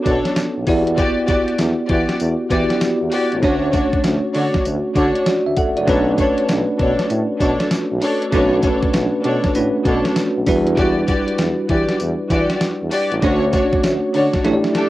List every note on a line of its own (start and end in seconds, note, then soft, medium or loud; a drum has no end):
0.00 0.63 B3 medium
0.00 0.69 C#4 medium
0.00 0.67 D4 medium
0.00 0.64 F#4 medium
0.00 0.64 A4 medium
0.00 0.64 C#5 medium
0.05 0.20 B2 loud
0.05 0.28 D4 medium
0.05 0.28 A4 medium
0.05 0.28 C#5 medium
0.05 kick loud
0.05 closed hi-hat medium
0.05 tambourine medium
0.25 snare medium
0.25 closed hi-hat medium
0.36 0.45 B1 soft
0.36 snare loud
0.36 closed hi-hat medium
0.36 tambourine loud
0.57 0.64 B1 medium
0.67 1.04 E2 loud
0.67 2.47 B3 medium
0.67 2.47 E4 medium
0.67 2.48 F#4 medium
0.67 2.48 G4 medium
0.67 2.48 D5 medium
0.67 kick loud
0.67 open hi-hat medium
0.67 tambourine medium
0.87 closed hi-hat soft
0.97 1.20 F#4 loud
0.97 1.20 G4 medium
0.97 1.20 D5 loud
0.97 kick loud
0.97 closed hi-hat medium
0.97 tambourine medium
1.27 1.50 F#4 medium
1.27 1.50 G4 medium
1.27 1.51 D5 medium
1.27 kick loud
1.27 closed hi-hat medium
1.27 tambourine medium
1.48 closed hi-hat soft
1.59 1.73 E2 loud
1.59 snare loud
1.59 closed hi-hat medium
1.59 tambourine loud
1.89 2.04 E3 loud
1.89 2.12 F#4 medium
1.89 2.12 G4 medium
1.89 2.12 D5 medium
1.89 kick loud
1.89 closed hi-hat medium
2.09 snare medium
2.09 closed hi-hat soft
2.20 2.34 E2 loud
2.20 closed hi-hat medium
2.20 tambourine medium
2.50 2.65 E3 loud
2.50 3.43 B3 medium
2.50 3.43 E4 medium
2.50 2.73 F#4 medium
2.50 3.43 F#4 medium
2.50 2.73 G4 medium
2.50 3.43 G4 medium
2.50 2.73 D5 medium
2.50 3.43 D5 medium
2.50 kick loud
2.50 closed hi-hat medium
2.50 tambourine medium
2.70 snare medium
2.70 closed hi-hat medium
2.81 2.90 E2 medium
2.81 snare loud
2.81 closed hi-hat medium
2.81 tambourine loud
3.01 3.09 E2 medium
3.11 3.34 F#4 medium
3.11 3.34 G4 medium
3.11 3.34 D5 medium
3.11 open hi-hat medium
3.11 tambourine medium
3.32 3.44 A1 medium
3.32 closed hi-hat soft
3.42 3.78 D2 loud
3.42 5.83 A3 medium
3.42 5.84 C#4 medium
3.42 3.65 D4 loud
3.42 5.84 D4 medium
3.42 3.65 F#4 loud
3.42 5.23 F#4 medium
3.42 3.65 C#5 loud
3.42 5.24 C#5 medium
3.42 kick loud
3.42 closed hi-hat medium
3.42 tambourine medium
3.72 3.95 D4 medium
3.72 3.95 F#4 medium
3.72 3.95 C#5 medium
3.72 kick loud
3.72 closed hi-hat medium
3.72 tambourine medium
3.93 kick medium
3.93 closed hi-hat soft
4.04 4.18 D2 loud
4.04 snare loud
4.04 closed hi-hat medium
4.04 tambourine loud
4.34 4.49 D3 loud
4.34 4.56 D4 medium
4.34 4.57 F#4 medium
4.34 4.57 C#5 medium
4.34 open hi-hat medium
4.54 kick loud
4.54 snare medium
4.54 closed hi-hat medium
4.65 4.80 D2 loud
4.65 closed hi-hat medium
4.65 tambourine medium
4.95 5.10 D3 loud
4.95 5.18 D4 medium
4.95 5.18 F#4 medium
4.95 5.18 C#5 medium
4.95 kick loud
4.95 closed hi-hat medium
4.95 tambourine medium
5.15 closed hi-hat medium
5.26 5.35 D2 soft
5.26 5.46 F#4 medium
5.26 5.45 D5 medium
5.26 snare loud
5.26 closed hi-hat medium
5.26 tambourine loud
5.47 5.54 D2 medium
5.47 5.57 E5 medium
5.57 5.76 A4 medium
5.57 5.76 F#5 medium
5.57 kick loud
5.57 closed hi-hat medium
5.57 tambourine medium
5.77 5.85 F#1 loud
5.77 5.87 F#4 medium
5.77 6.06 D5 medium
5.77 closed hi-hat soft
5.87 6.23 B1 loud
5.87 8.28 A3 medium
5.87 8.28 C#4 medium
5.87 6.10 D4 medium
5.87 8.29 D4 medium
5.87 8.29 F#4 medium
5.87 6.10 A4 medium
5.87 8.29 B4 medium
5.87 6.10 C#5 loud
5.87 kick loud
5.87 closed hi-hat medium
5.87 tambourine medium
6.18 6.40 D4 medium
6.18 6.40 A4 medium
6.18 6.41 C#5 medium
6.18 kick loud
6.18 closed hi-hat medium
6.18 tambourine medium
6.38 closed hi-hat soft
6.49 6.63 B1 loud
6.49 snare loud
6.49 closed hi-hat medium
6.49 tambourine loud
6.79 6.93 B2 loud
6.79 7.02 D4 medium
6.79 7.02 A4 medium
6.79 7.02 C#5 medium
6.79 kick loud
6.79 closed hi-hat medium
6.99 snare medium
6.99 closed hi-hat soft
7.10 7.24 A2 loud
7.10 closed hi-hat medium
7.10 tambourine medium
7.40 7.55 B2 loud
7.40 7.63 D4 medium
7.40 7.63 A4 medium
7.40 7.63 C#5 medium
7.40 kick loud
7.40 closed hi-hat medium
7.40 tambourine medium
7.60 snare medium
7.60 closed hi-hat medium
7.71 7.79 B1 soft
7.71 snare loud
7.71 closed hi-hat medium
7.71 tambourine loud
7.91 7.99 B1 loud
8.02 8.24 D4 medium
8.02 8.24 A4 medium
8.02 8.24 C#5 loud
8.02 open hi-hat medium
8.02 tambourine medium
8.22 closed hi-hat soft
8.32 8.68 B1 loud
8.32 9.52 A3 medium
8.32 9.53 C#4 medium
8.32 8.55 D4 loud
8.32 9.53 D4 medium
8.32 9.53 F#4 medium
8.32 8.55 A4 medium
8.32 9.54 B4 medium
8.32 8.55 C#5 loud
8.32 kick loud
8.32 closed hi-hat medium
8.32 tambourine medium
8.63 8.85 D4 medium
8.63 8.85 A4 medium
8.63 8.85 C#5 medium
8.63 kick loud
8.63 closed hi-hat medium
8.63 tambourine medium
8.83 kick medium
8.83 closed hi-hat soft
8.94 9.08 B1 loud
8.94 snare loud
8.94 closed hi-hat medium
8.94 tambourine loud
9.24 9.39 B2 loud
9.24 9.46 D4 medium
9.24 9.47 A4 medium
9.24 9.47 C#5 medium
9.24 closed hi-hat medium
9.44 kick medium
9.44 snare medium
9.44 closed hi-hat soft
9.55 9.69 A2 medium
9.55 10.47 A3 medium
9.55 10.47 C#4 medium
9.55 10.46 D4 medium
9.55 10.47 F#4 medium
9.55 10.48 B4 medium
9.55 closed hi-hat medium
9.55 tambourine medium
9.85 9.99 B2 loud
9.85 10.08 D4 medium
9.85 10.08 A4 medium
9.85 10.08 C#5 medium
9.85 kick loud
9.85 closed hi-hat medium
9.85 tambourine medium
10.05 snare medium
10.05 closed hi-hat medium
10.16 10.24 B1 medium
10.16 snare loud
10.16 closed hi-hat medium
10.16 tambourine loud
10.36 10.44 B1 medium
10.46 11.04 E2 loud
10.46 12.87 G3 medium
10.46 12.88 D4 medium
10.46 12.88 E4 medium
10.46 12.88 F#4 medium
10.46 12.89 B4 medium
10.46 kick loud
10.46 open hi-hat medium
10.46 tambourine medium
10.67 closed hi-hat soft
10.77 11.00 F#4 loud
10.77 11.00 G4 medium
10.77 11.00 D5 loud
10.77 kick loud
10.77 closed hi-hat medium
10.77 tambourine medium
11.07 11.30 F#4 medium
11.07 11.30 G4 medium
11.07 11.30 D5 medium
11.07 kick loud
11.07 closed hi-hat medium
11.07 tambourine medium
11.28 closed hi-hat soft
11.38 11.53 E2 loud
11.38 snare loud
11.38 closed hi-hat medium
11.38 tambourine loud
11.69 11.83 E3 loud
11.69 11.91 F#4 medium
11.69 11.92 G4 medium
11.69 11.92 D5 medium
11.69 kick loud
11.69 closed hi-hat medium
11.89 snare medium
11.89 closed hi-hat medium
12.00 12.14 E2 loud
12.00 closed hi-hat medium
12.00 tambourine medium
12.30 12.44 E3 loud
12.30 12.53 F#4 medium
12.30 12.53 G4 medium
12.30 12.53 D5 medium
12.30 kick loud
12.30 closed hi-hat medium
12.30 tambourine medium
12.50 snare medium
12.50 closed hi-hat medium
12.61 12.70 E2 soft
12.61 snare loud
12.61 closed hi-hat medium
12.61 tambourine loud
12.82 12.89 E2 medium
12.91 13.14 F#4 medium
12.91 13.14 G4 medium
12.91 13.14 D5 medium
12.91 open hi-hat medium
12.91 tambourine medium
13.12 13.20 A1 loud
13.12 closed hi-hat soft
13.22 13.58 D2 loud
13.22 14.42 A3 medium
13.22 14.43 C#4 medium
13.22 13.45 D4 loud
13.22 14.43 D4 medium
13.22 13.45 F#4 medium
13.22 14.43 F#4 medium
13.22 13.45 C#5 loud
13.22 14.44 C#5 loud
13.22 kick loud
13.22 closed hi-hat medium
13.22 tambourine medium
13.53 13.75 D4 medium
13.53 13.75 F#4 medium
13.53 13.76 C#5 medium
13.53 kick loud
13.53 closed hi-hat medium
13.53 tambourine medium
13.73 kick loud
13.73 closed hi-hat soft
13.83 13.98 D2 loud
13.83 snare loud
13.83 closed hi-hat medium
13.83 tambourine loud
14.14 14.28 D3 loud
14.14 14.36 D4 medium
14.14 14.37 F#4 medium
14.14 14.37 C#5 medium
14.14 open hi-hat medium
14.33 kick medium
14.33 snare medium
14.33 closed hi-hat soft
14.44 14.59 A1 loud
14.44 14.89 A3 medium
14.44 14.89 D4 medium
14.44 14.89 E4 medium
14.44 14.89 G4 medium
14.44 14.54 C#5 medium
14.44 snare medium
14.44 closed hi-hat medium
14.53 14.89 D5 medium
14.64 snare medium
14.75 14.89 D4 medium
14.75 14.89 G4 medium
14.75 14.89 A4 medium
14.75 snare medium
14.75 closed hi-hat medium